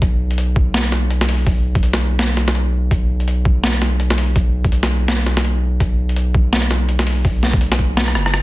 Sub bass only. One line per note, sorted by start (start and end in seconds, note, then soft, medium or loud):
0.02 1.46 B1 medium
1.47 1.82 B1 loud
1.83 2.90 B1 loud
2.91 4.35 B1 loud
4.36 4.71 B1 loud
4.72 5.79 B1 loud
5.80 7.24 B1 loud
7.25 7.60 B1 loud
7.61 8.17 B1 loud
8.15 8.43 F#1 loud